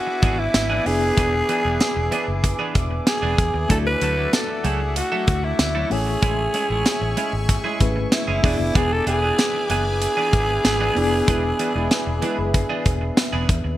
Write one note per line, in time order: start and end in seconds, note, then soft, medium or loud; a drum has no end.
0.00 0.81 B3 medium
0.00 0.82 D4 medium
0.00 0.82 E4 medium
0.00 0.41 F#4 loud
0.00 3.66 B4 medium
0.00 0.83 D5 medium
0.00 3.66 E5 medium
0.00 0.82 G#5 medium
0.00 3.66 G#5 medium
0.00 5.87 D6 loud
0.07 muted clean electric guitar stroke medium
0.22 0.46 G#1 medium
0.22 0.38 E3 medium
0.22 0.38 B3 medium
0.22 0.38 D4 medium
0.22 0.37 G#4 medium
0.22 kick loud
0.22 closed hi-hat medium
0.38 0.88 E4 loud
0.38 muted clean electric guitar stroke soft
0.54 0.78 G#1 loud
0.54 muted clean electric guitar stroke soft
0.54 snare loud
0.54 closed hi-hat loud
0.54 tambourine medium
0.70 0.84 E3 medium
0.70 0.85 B3 medium
0.70 0.85 D4 medium
0.70 0.85 G#4 medium
0.85 1.10 F1 medium
0.85 3.34 B3 medium
0.85 3.34 D4 medium
0.85 3.35 E4 medium
0.85 3.35 G#4 medium
0.85 2.76 G#4 loud
0.85 3.35 D5 medium
0.85 muted clean electric guitar stroke medium
0.85 open hi-hat medium
1.01 muted clean electric guitar stroke soft
1.17 1.41 E1 loud
1.17 1.33 E3 medium
1.17 1.33 B3 medium
1.17 1.33 D4 medium
1.17 1.33 G#4 loud
1.17 kick loud
1.17 closed hi-hat loud
1.49 1.61 E3 medium
1.49 1.61 B3 medium
1.49 1.61 D4 medium
1.49 1.62 G#4 medium
1.49 closed hi-hat medium
1.64 1.77 E1 medium
1.64 1.77 E3 medium
1.64 1.77 B3 medium
1.64 1.77 D4 medium
1.64 1.77 G#4 medium
1.80 muted clean electric guitar stroke soft
1.80 snare loud
1.80 closed hi-hat medium
1.80 tambourine medium
1.96 2.08 E1 loud
1.96 muted clean electric guitar stroke soft
2.12 2.27 E3 medium
2.12 2.27 B3 loud
2.12 2.27 D4 loud
2.12 2.26 G#4 medium
2.12 closed hi-hat medium
2.28 2.52 F#1 medium
2.28 muted clean electric guitar stroke medium
2.43 muted clean electric guitar stroke soft
2.43 kick medium
2.43 closed hi-hat medium
2.59 2.74 E3 medium
2.59 2.74 B3 medium
2.59 2.74 D4 medium
2.59 2.75 G#4 medium
2.75 2.99 E1 medium
2.75 muted clean electric guitar stroke soft
2.75 kick medium
2.75 closed hi-hat medium
2.91 muted clean electric guitar stroke soft
3.06 3.67 G#4 loud
3.06 muted clean electric guitar stroke soft
3.06 snare loud
3.06 closed hi-hat loud
3.06 tambourine medium
3.22 3.34 E1 medium
3.22 3.37 E3 medium
3.22 3.37 B3 medium
3.22 3.38 D4 medium
3.22 3.38 G#4 medium
3.38 3.50 E2 medium
3.38 muted clean electric guitar stroke soft
3.38 kick loud
3.38 closed hi-hat medium
3.54 3.66 D#2 medium
3.54 muted clean electric guitar stroke soft
3.69 3.94 D2 loud
3.69 3.85 F#3 medium
3.69 5.86 A3 medium
3.69 3.85 A3 medium
3.69 8.40 A3 medium
3.69 5.87 D4 medium
3.69 5.87 E4 medium
3.69 3.86 E4 medium
3.69 5.87 F#4 medium
3.69 3.78 A4 loud
3.69 3.86 A4 medium
3.69 5.88 D5 medium
3.69 8.40 E5 medium
3.69 5.89 F#5 medium
3.69 kick loud
3.69 closed hi-hat loud
3.87 4.35 B4 loud
4.01 4.25 D2 loud
4.01 4.13 F#3 medium
4.01 4.14 A3 medium
4.01 4.14 E4 medium
4.01 4.14 A4 medium
4.01 closed hi-hat medium
4.17 4.30 F#3 soft
4.17 4.30 A3 medium
4.17 4.29 E4 medium
4.17 4.29 A4 medium
4.33 4.67 A4 loud
4.33 muted clean electric guitar stroke soft
4.33 snare loud
4.33 closed hi-hat medium
4.33 tambourine medium
4.49 muted clean electric guitar stroke soft
4.64 5.00 C#2 medium
4.64 4.80 F#3 medium
4.64 4.80 A3 medium
4.64 4.80 E4 medium
4.64 4.96 G#4 medium
4.64 4.79 A4 loud
4.64 closed hi-hat medium
4.80 muted clean electric guitar stroke medium
4.96 5.46 F#4 loud
4.96 muted clean electric guitar stroke soft
4.96 closed hi-hat medium
5.12 5.27 F#3 medium
5.12 5.27 A3 medium
5.12 5.28 E4 medium
5.12 5.27 A4 medium
5.28 5.52 D2 loud
5.28 muted clean electric guitar stroke soft
5.28 kick loud
5.28 closed hi-hat medium
5.44 5.93 E4 loud
5.44 muted clean electric guitar stroke soft
5.59 5.83 D2 loud
5.59 muted clean electric guitar stroke soft
5.59 snare loud
5.59 closed hi-hat loud
5.59 tambourine medium
5.75 5.90 F#3 medium
5.75 5.91 A3 medium
5.75 5.90 E4 medium
5.75 5.90 A4 medium
5.90 6.15 A1 loud
5.90 7.76 A3 medium
5.90 7.76 C#4 medium
5.90 7.77 E4 medium
5.90 7.77 G#4 medium
5.90 7.81 G#4 loud
5.90 7.77 C#5 medium
5.90 8.41 G#5 medium
5.90 8.41 C#6 loud
5.90 muted clean electric guitar stroke soft
5.90 open hi-hat medium
6.07 muted clean electric guitar stroke soft
6.22 6.46 A1 loud
6.22 6.38 G#3 medium
6.22 6.38 C#4 loud
6.22 6.38 E4 loud
6.22 6.38 G#4 loud
6.22 kick loud
6.22 closed hi-hat medium
6.54 6.66 G#3 medium
6.54 6.66 C#4 medium
6.54 6.67 E4 medium
6.54 6.67 G#4 medium
6.54 closed hi-hat medium
6.70 6.82 A1 loud
6.70 6.83 G#3 medium
6.70 6.82 C#4 soft
6.70 6.82 E4 medium
6.70 6.82 G#4 medium
6.86 muted clean electric guitar stroke soft
6.86 snare loud
6.86 closed hi-hat medium
6.86 tambourine medium
7.01 7.13 A1 medium
7.01 muted clean electric guitar stroke soft
7.17 7.32 G#3 medium
7.17 7.33 C#4 loud
7.17 7.32 E4 loud
7.17 7.32 G#4 loud
7.17 closed hi-hat medium
7.33 7.57 G#1 medium
7.33 muted clean electric guitar stroke medium
7.49 muted clean electric guitar stroke soft
7.49 kick loud
7.49 closed hi-hat medium
7.64 7.79 G#3 medium
7.64 7.79 C#4 medium
7.64 7.80 E4 medium
7.64 7.80 G#4 medium
7.80 8.04 G#1 medium
7.80 8.43 A3 medium
7.80 8.44 C#4 medium
7.80 8.43 E4 medium
7.80 8.43 G#4 medium
7.80 8.44 B4 medium
7.80 muted clean electric guitar stroke soft
7.80 kick medium
7.80 closed hi-hat medium
7.96 muted clean electric guitar stroke medium
8.12 8.78 E4 loud
8.12 muted clean electric guitar stroke soft
8.12 snare loud
8.12 closed hi-hat loud
8.12 tambourine medium
8.28 8.40 F#1 medium
8.28 8.41 G#3 medium
8.28 8.40 C#4 medium
8.28 8.40 E4 medium
8.28 8.40 G#4 medium
8.43 8.56 E1 loud
8.43 8.59 E3 medium
8.43 10.92 B3 medium
8.43 8.59 B3 medium
8.43 10.92 D4 medium
8.43 8.59 D4 medium
8.43 10.92 E4 medium
8.43 10.93 G#4 medium
8.43 8.58 G#4 loud
8.43 13.77 B4 medium
8.43 10.93 D5 medium
8.43 13.76 E5 medium
8.43 13.77 G#5 medium
8.43 13.76 D6 medium
8.43 kick loud
8.43 open hi-hat medium
8.59 8.71 F1 loud
8.59 muted clean electric guitar stroke soft
8.75 8.99 E1 loud
8.75 8.90 E3 medium
8.75 8.91 B3 medium
8.75 8.91 D4 medium
8.75 8.91 G#4 loud
8.75 8.94 G#4 loud
8.75 kick loud
8.75 closed hi-hat medium
8.92 9.07 A4 loud
9.06 9.30 E1 loud
9.06 9.19 E3 medium
9.06 9.19 B3 medium
9.06 9.19 D4 medium
9.06 9.67 G#4 loud
9.06 9.19 G#4 medium
9.06 closed hi-hat medium
9.22 9.35 E3 soft
9.22 9.35 B3 medium
9.22 9.35 D4 medium
9.22 9.34 G#4 medium
9.38 muted clean electric guitar stroke soft
9.38 snare loud
9.38 closed hi-hat medium
9.38 tambourine medium
9.54 muted clean electric guitar stroke medium
9.69 10.06 F#1 medium
9.69 9.85 E3 medium
9.69 9.85 B3 loud
9.69 9.85 D4 loud
9.69 13.14 G#4 loud
9.69 9.84 G#4 medium
9.69 closed hi-hat medium
9.85 muted clean electric guitar stroke soft
10.01 muted clean electric guitar stroke soft
10.01 closed hi-hat medium
10.17 10.32 E3 medium
10.17 10.32 B3 medium
10.17 10.33 D4 medium
10.17 10.33 G#4 medium
10.33 10.57 G#1 medium
10.33 muted clean electric guitar stroke soft
10.33 kick medium
10.33 closed hi-hat medium
10.49 muted clean electric guitar stroke soft
10.65 10.88 G#1 loud
10.65 muted clean electric guitar stroke soft
10.65 snare loud
10.65 closed hi-hat loud
10.65 tambourine medium
10.80 10.95 E3 medium
10.80 10.95 B3 medium
10.80 10.96 D4 medium
10.80 10.96 G#4 medium
10.95 11.20 F1 medium
10.95 13.44 B3 medium
10.95 13.45 D4 medium
10.95 13.45 E4 medium
10.95 13.45 G#4 medium
10.95 13.46 D5 medium
10.95 muted clean electric guitar stroke medium
10.95 open hi-hat medium
11.12 muted clean electric guitar stroke medium
11.28 11.52 E1 loud
11.28 11.43 E3 medium
11.28 11.41 G#3 medium
11.28 11.43 B3 medium
11.28 11.44 D4 medium
11.28 11.41 E4 medium
11.28 11.44 G#4 loud
11.28 11.41 B4 loud
11.28 kick loud
11.28 closed hi-hat loud
11.59 11.71 E3 medium
11.59 11.72 B3 medium
11.59 11.72 D4 medium
11.59 11.72 G#4 medium
11.59 closed hi-hat medium
11.75 11.87 E1 medium
11.75 11.88 E3 medium
11.75 11.89 G#3 medium
11.75 11.88 B3 medium
11.75 11.87 D4 medium
11.75 11.89 E4 loud
11.75 11.87 G#4 medium
11.75 11.89 B4 loud
11.91 snare loud
11.91 closed hi-hat medium
11.91 tambourine medium
12.07 12.19 E1 loud
12.07 muted clean electric guitar stroke soft
12.22 12.38 E3 loud
12.22 12.50 G#3 medium
12.22 12.38 B3 loud
12.22 12.38 D4 loud
12.22 12.50 E4 loud
12.22 12.37 G#4 loud
12.22 12.50 B4 loud
12.22 closed hi-hat medium
12.38 12.62 F#1 medium
12.38 muted clean electric guitar stroke medium
12.54 muted clean electric guitar stroke soft
12.54 kick medium
12.54 closed hi-hat medium
12.69 12.84 E3 medium
12.69 12.85 B3 medium
12.69 12.85 D4 medium
12.69 12.85 G#4 medium
12.85 13.10 E1 medium
12.85 muted clean electric guitar stroke soft
12.85 kick medium
12.85 closed hi-hat medium
13.01 muted clean electric guitar stroke medium
13.17 muted clean electric guitar stroke soft
13.17 snare loud
13.17 closed hi-hat loud
13.17 tambourine medium
13.33 13.45 E1 medium
13.33 13.47 E3 medium
13.33 13.48 B3 medium
13.33 13.48 D4 medium
13.33 13.48 G#4 medium
13.48 13.61 E2 medium
13.48 muted clean electric guitar stroke soft
13.48 kick loud
13.48 closed hi-hat medium
13.64 13.77 D#2 loud
13.64 muted clean electric guitar stroke soft